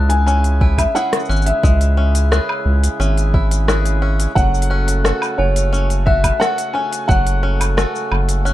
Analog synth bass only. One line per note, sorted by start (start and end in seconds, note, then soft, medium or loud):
0.00 0.86 C#2 medium
1.29 1.53 G#1 medium
1.64 2.40 C#2 medium
2.66 2.89 C#2 medium
3.00 4.27 G#1 medium
4.36 5.13 F#1 loud
5.39 6.32 F#1 medium
7.09 7.86 F#1 medium
8.12 8.53 F#1 medium